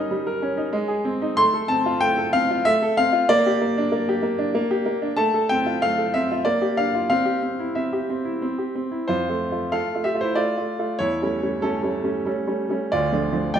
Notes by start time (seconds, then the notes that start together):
Already playing: G3 C#4 D#4 A#4 D#5
0.11 G3
0.27 A#4
0.42 C#4
0.57 D#4
0.73 G#3
0.88 G#4
1.05 C4
1.22 D#4
1.37 A3 C6
1.54 A4
1.68 C4 A5
1.86 F4
2.01 A3 G5
2.18 A4
2.33 C4 F5
2.51 F4
2.65 A3 E5
2.82 A4
2.97 C4 F5
3.13 F4
3.29 A#3 D5
3.46 G4
3.61 A#3
3.78 D4
3.92 A#3
4.09 G4
4.23 A#3
4.39 D4
4.55 A#3
4.71 G4
4.86 A#3
5.02 D4
5.17 A3 A5
5.34 A4
5.49 C4 G5
5.66 F4
5.82 A3 F5
5.98 A4
6.14 C4 E5
6.31 F4
6.45 A#3 D5
6.62 G4
6.77 D4 F5
6.95 F4
7.10 C4 F5
7.25 G4
7.43 C4
7.59 E4
7.75 C4 E5
7.93 G4
8.10 C4
8.25 E4
8.42 C4
8.58 G4
8.75 C4
8.91 E4
9.08 F2 F4 C5
9.30 A3 F4
9.52 A3 F4
9.72 A3 F4 A4 F5
9.95 A3 F4
10.04 G4 E5
10.14 A3 F4
10.21 E4 C5
10.35 A3 F4 D5
10.57 A3 F4
10.79 A3 F4
10.99 E2 E4 C#5
11.22 G3 A3 C#4
11.43 G3 A3 C#4
11.62 G3 A3 C#4 A4
11.83 G3 A3 C#4
12.04 G3 A3 C#4
12.25 G3 A3 C#4
12.47 G3 A3 C#4
12.69 G3 A3 C#4
12.92 D2 F4 D5
13.13 F3 A3 D4
13.33 F3 A3 D4
13.54 F3 A3 D4 D5 G5